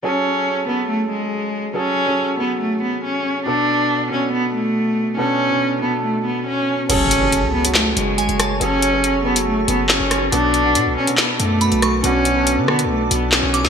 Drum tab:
CC |----------------|----------------|----------------|----------------|
HH |----------------|----------------|----------------|----------------|
CP |----------------|----------------|----------------|----------------|
SD |----------------|----------------|----------------|----------------|

CC |x---------------|----------------|----------------|----------------|
HH |x-x-x--x--x-xxx-|x-x-x--x--x---x-|x-x-x--x--x-xxx-|x-x-x--x--x---x-|
CP |--------x-------|------------x---|--------x-------|------------x---|
SD |--------o-----r-|------------o-r-|--------o-----r-|------r-----o--o|